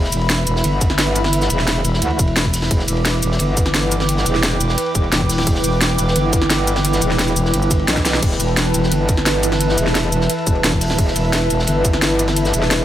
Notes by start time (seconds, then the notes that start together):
Already playing: E1 E3 E4 B4 E5 B5
0.04 snare
0.12 E1, closed hi-hat, ride, shaker
0.21 ride
0.29 snare, closed hi-hat, ride
0.47 E1, closed hi-hat, ride, shaker
0.56 snare
0.64 G1, closed hi-hat, ride
0.81 kick, closed hi-hat, ride, shaker
0.90 snare
0.98 snare, closed hi-hat, ride
1.15 closed hi-hat, ride, shaker
1.24 snare
1.33 closed hi-hat, ride
1.41 snare, shaker
1.50 E1, closed hi-hat, ride, shaker
1.59 snare
1.67 snare, closed hi-hat, ride
1.85 E1, closed hi-hat, ride, shaker
1.94 snare
2.02 D2, closed hi-hat, ride
2.10 ride
2.19 E1, kick, closed hi-hat, ride, shaker
2.27 ride
2.36 snare, closed hi-hat, ride
2.45 kick
2.54 snare, closed hi-hat, open hi-hat, shaker
2.62 snare
2.71 E1 D6, kick, closed hi-hat, ride
2.79 snare
2.88 E1, closed hi-hat, ride, shaker
2.97 ride
3.05 snare, closed hi-hat, ride
3.23 E1 G5, closed hi-hat, ride, shaker
3.32 snare
3.39 G1, closed hi-hat, ride
3.57 kick, closed hi-hat, ride, shaker
3.66 snare
3.74 snare, closed hi-hat, ride
3.92 closed hi-hat, ride, shaker
4.00 snare
4.09 closed hi-hat, ride
4.17 snare
4.26 E1, closed hi-hat, ride, shaker
4.35 snare
4.43 snare, closed hi-hat, ride
4.61 E1, closed hi-hat, ride, shaker
4.69 snare
4.78 closed hi-hat, ride
4.86 ride
4.95 E1, kick, closed hi-hat, ride, shaker
5.04 ride
5.12 E1, snare, closed hi-hat, ride
5.21 kick
5.29 snare, closed hi-hat, open hi-hat, shaker
5.38 snare
5.47 E1, kick, closed hi-hat, ride
5.55 snare
5.64 E1, closed hi-hat, ride, shaker
5.73 ride
5.81 snare, closed hi-hat, ride
5.98 E1, closed hi-hat, ride, shaker
6.08 snare
6.16 G1, closed hi-hat, ride
6.33 kick, closed hi-hat, ride, shaker
6.42 snare
6.50 snare, closed hi-hat, ride
6.67 closed hi-hat, ride, shaker
6.76 snare
6.85 closed hi-hat, ride
6.93 snare, shaker
7.01 E1, closed hi-hat, ride, shaker
7.11 snare
7.19 snare, closed hi-hat, ride
7.28 shaker
7.36 E1, closed hi-hat, ride, shaker
7.45 snare
7.54 G1, closed hi-hat, ride
7.62 ride, shaker
7.71 kick, closed hi-hat, ride, shaker
7.79 ride
7.88 B1, snare, closed hi-hat
7.97 kick, snare, ride, shaker
8.05 snare, closed hi-hat, ride, shaker
8.14 snare
8.22 E1 A5, kick, closed hi-hat, crash, ride
8.31 snare
8.40 E1, closed hi-hat, ride, shaker
8.48 ride
8.57 snare, closed hi-hat, ride
8.74 E1 E5, closed hi-hat, ride, shaker
8.83 snare
8.91 G1, closed hi-hat, ride
9.09 kick, closed hi-hat, ride, shaker
9.17 snare
9.26 snare, closed hi-hat, ride
9.43 closed hi-hat, ride, shaker
9.52 snare
9.61 closed hi-hat, ride
9.69 snare
9.78 E1, closed hi-hat, ride, shaker
9.86 snare
9.95 snare, closed hi-hat, ride
10.12 E1, closed hi-hat, ride, shaker
10.21 snare
10.30 closed hi-hat, ride
10.38 ride
10.47 E1, kick, closed hi-hat, ride, shaker
10.55 ride
10.64 E1, snare, closed hi-hat, ride
10.73 kick
10.81 snare, closed hi-hat, open hi-hat, shaker
10.90 snare
10.98 E1, kick, closed hi-hat, ride
11.08 snare
11.16 E1, closed hi-hat, ride, shaker
11.25 ride
11.33 snare, closed hi-hat, ride
11.50 E1, closed hi-hat, ride, shaker
11.59 snare
11.67 G1, closed hi-hat, ride
11.85 kick, closed hi-hat, ride, shaker
11.93 snare
12.02 snare, closed hi-hat, ride
12.19 closed hi-hat, ride, shaker
12.28 snare
12.36 closed hi-hat, ride
12.45 snare, shaker
12.54 E1, closed hi-hat, ride, shaker
12.62 snare
12.71 snare, closed hi-hat, ride